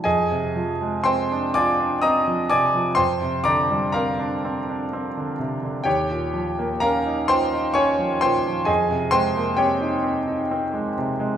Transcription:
<<
  \new Staff \with { instrumentName = "Grand piano" } { \time 3/4 \key f \minor \tempo 4 = 63 <aes' ees'' aes''>4 <c'' g'' c'''>8 <d'' aes'' d'''>8 <ees'' bes'' ees'''>8 <d'' aes'' d'''>8 | <c'' g'' c'''>8 <d'' bes'' d'''>8 <bes' f'' bes''>4. r8 | <g' des'' g''>4 <bes' f'' bes''>8 <c'' g'' c'''>8 <des'' aes'' des'''>8 <c'' g'' c'''>8 | <aes' ees'' aes''>8 <c'' g'' c'''>8 <g' des'' g''>4. r8 | }
  \new Staff \with { instrumentName = "Grand piano" } { \clef bass \time 3/4 \key f \minor f,16 c16 f16 aes16 c'16 d'16 f'16 d'16 c'16 f16 c16 f16 | f,16 c16 d16 g16 c'16 d'16 c'16 d'16 c'16 d16 c16 d16 | ees,16 bes,16 f16 bes16 des'16 ees'16 f'16 ees'16 des'16 f16 bes,16 f16 | f,16 c16 aes16 bes16 c'16 ees'16 c'16 ees'16 c'16 aes16 c16 aes16 | }
>>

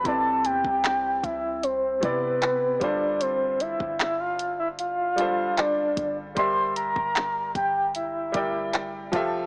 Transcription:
<<
  \new Staff \with { instrumentName = "Soft synth lead" } { \time 4/4 \key g \mixolydian \tempo 4 = 76 a''8 g''4 e''8 c''8 b'4 d''8 | c''8 e''8 e''16 f''8 e''16 f''4 d''8. r16 | c'''8 bes''4 g''8 e''4. r8 | }
  \new Staff \with { instrumentName = "Grand piano" } { \time 4/4 \key g \mixolydian <c c' e' b' d''>4~ <c c' e' b' d''>16 r4 r16 <c c' e' b' d''>4 <g d' f' a' c''>8~ | <g d' f' a' c''>4 r4. <g d' f' a' c''>4 r8 | <g g' bes' d'' e''>4~ <g g' bes' d'' e''>16 r4 r16 <g g' bes' d'' g''>4 <f f' g' a' e''>8 | }
  \new Staff \with { instrumentName = "808-style bass" } { \clef bass \time 4/4 \key g \mixolydian c,8 e,16 c,8. c,4 c4 g,,8~ | g,,8. g,,2~ g,,8. g,,8 | g,,8. g,,8. g,,4 g,,4 f,,8 | }
  \new DrumStaff \with { instrumentName = "Drums" } \drummode { \time 4/4 <hh bd>8 hh16 bd16 <hc hh>8 <hh bd>8 hh8 <hh bd>8 <hc hh>8 <hh bd>8 | hh8 hh16 bd16 <hc hh>8 hh8 hh8 hh8 <hc hh>8 <hh bd>8 | <hh bd>8 hh16 bd16 <hc hh>8 <hh bd>8 hh8 <hh bd>8 <hc hh>8 <hh bd>8 | }
>>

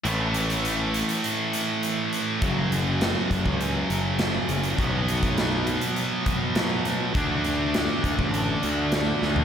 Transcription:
<<
  \new Staff \with { instrumentName = "Distorted electric guitar" } { \clef bass \time 4/4 \key a \major \tempo 4 = 102 <a, e a>1 | <fis, cis fis>1 | <b, fis b>1 | <d a d'>1 | }
  \new Staff \with { instrumentName = "Picked electric bass" } { \clef bass \time 4/4 \key a \major a,,2 r2 | fis,,4. fis,,16 cis,8. fis,,4 fis,,8 | b,,2 r2 | d,4. d,16 a,,8. d,4 d,8 | }
  \new DrumStaff \with { instrumentName = "Drums" } \drummode { \time 4/4 hh8 hh16 hh16 hh8 hh16 hh16 hh8 hh8 hh8 hh8 | <hh bd>8 hh8 <hh sn>8 <hh bd>16 bd16 hh8 hh8 <hh sn>8 hh16 hh16 | <hh bd>8 hh16 <hh bd>16 <hh sn>8 hh16 hh16 hh8 <hh bd>8 <hh sn>8 <hh sn>8 | <hh bd>8 hh8 <hh sn>8 <hh bd>16 bd16 hh8 hh8 <hh sn>8 sn16 tomfh16 | }
>>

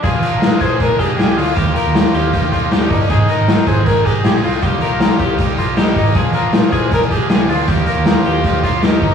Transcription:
<<
  \new Staff \with { instrumentName = "Clean electric guitar" } { \time 4/4 \key bes \mixolydian \tempo 4 = 157 aes'8 bes'4 aes'4 g'8 aes'8 f'8 | g'8 bes'4 g'4 f'8 g'8 ees'8 | aes'8 bes'4 aes'4 g'8 aes'8 f'8 | g'8 bes'4 g'4 f'8 g'8 ees'8 |
aes'8 bes'4 aes'4 g'8 aes'8 f'8 | g'8 bes'4 g'4 f'8 g'8 ees'8 | }
  \new Staff \with { instrumentName = "Trumpet" } { \time 4/4 \key bes \mixolydian f'4. c''8 bes'8 aes'8 g'8 f'8 | f'2. d'4 | ees'4. c''8 bes'8 aes'8 g'8 f'8 | f'2~ f'8 r8 ees'4 |
f'4. c''8 bes'8 aes'8 g'8 f'8 | f'2. ees'4 | }
  \new Staff \with { instrumentName = "Overdriven electric guitar" } { \time 4/4 \key bes \mixolydian <bes, d f bes d' aes'>8 <f bes d' aes'>8 <bes, d f bes d' aes'>8 <f bes d' aes'>8 <f bes d' aes'>8 <f bes d' aes'>8 <bes, d f bes d' aes'>8 <f bes d' aes'>8 | <ees f bes ees' g'>8 <bes ees' g'>8 <ees f bes ees' g'>8 <bes ees' g'>8 <f bes ees' g'>8 <bes ees' g'>8 <ees f bes ees' g'>8 <bes ees' g'>8 | <aes, ees aes c' ees' aes'>8 <aes c' ees' aes'>8 <aes, ees aes c' ees' aes'>8 <aes c' ees' aes'>8 <aes c' ees' aes'>8 <aes c' ees' aes'>8 <aes, ees aes c' ees' aes'>8 <aes c' ees' aes'>8 | <c g bes ees' g'>8 <bes ees' g'>8 <c g bes ees' g'>8 <bes ees' g'>8 <g bes ees' g'>8 <bes ees' g'>8 <c g bes ees' g'>8 <bes ees' g'>8 |
<bes, d f bes d' aes'>8 <f bes d' aes'>8 <bes, d f bes d' aes'>8 <f bes d' aes'>8 <f bes d' aes'>8 <f bes d' aes'>8 <bes, d f bes d' aes'>8 <f bes d' aes'>8 | <ees f bes ees' g'>8 <bes ees' g'>8 <ees f bes ees' g'>8 <bes ees' g'>8 <f bes ees' g'>8 <bes ees' g'>8 <ees f bes ees' g'>8 <bes ees' g'>8 | }
  \new Staff \with { instrumentName = "Picked electric bass" } { \clef bass \time 4/4 \key bes \mixolydian bes,,8 r16 bes,,8 r16 bes,,4. c,8 d,8 | ees,8 r16 ees,8 r16 ees,2 g,,8 | aes,,8 r16 aes,,8 r16 aes,,4. bes,,8 c,8 | c,8 r16 c,8 r16 c,2 aes,,8 |
bes,,8 r16 bes,,8 r16 bes,,4. c,8 d,8 | ees,8 r16 ees,8 r16 ees,2 g,,8 | }
  \new DrumStaff \with { instrumentName = "Drums" } \drummode { \time 4/4 <hh bd>8 hh8 <hh sn>8 <hh bd>8 <hh bd>8 <hh bd>8 <hh sn>8 hho8 | <hh bd>8 hh8 <hh sn>8 hh8 <hh bd>8 <hh bd>8 <hh sn>8 <hho bd>8 | <hh bd>8 hh8 <hh sn>8 <hh bd>8 <hh bd>8 <hh bd>8 <hh sn>8 hho8 | <hh bd>8 hh8 <hh sn>8 <hh bd>8 <hh bd>8 <hh bd>8 <hh sn>8 <hho bd>8 |
<hh bd>8 hh8 <hh sn>8 <hh bd>8 <hh bd>8 <hh bd>8 <hh sn>8 hho8 | <hh bd>8 hh8 <hh sn>8 hh8 <hh bd>8 <hh bd>8 <hh sn>8 <hho bd>8 | }
>>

